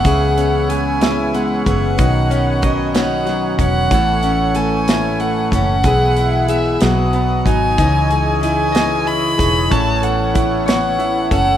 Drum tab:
HH |xxxxxx|xxxxxx|xxxxxx|xxxxxx|
SD |---o--|---oo-|---o--|---o--|
BD |o----o|o-o--o|o----o|o----o|

HH |xxxxxx|xxxxxx|
SD |---o--|---o--|
BD |o----o|o-o--o|